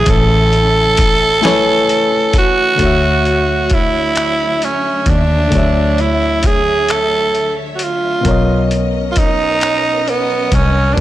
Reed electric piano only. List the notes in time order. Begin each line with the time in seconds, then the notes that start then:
Already playing: A3 E4 B4 E5 G#5
1.41 A3 E4 B4 G#5
1.46 C#5
2.75 D3 A3
2.81 F#4 C#5
2.85 E5
5.48 D3 A3
5.53 F#3 C#5
5.58 E5
8.21 B2 B3
8.26 A#4 C#5
8.31 D#5
10.94 B2 B3